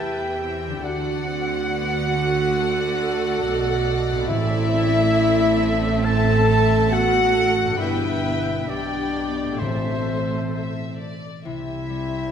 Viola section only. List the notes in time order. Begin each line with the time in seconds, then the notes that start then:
Already playing: E4 B4
0.40 C4
0.84 D4 F#4
1.27 C4
1.71 B3 F#4
2.15 A3
2.57 A3 A4
4.30 C4 A4
5.15 C4
6.92 B3
7.35 A3
7.82 B3 B4
8.25 B3
8.70 G4
9.15 G4
9.59 A3 A4
11.44 G3 C5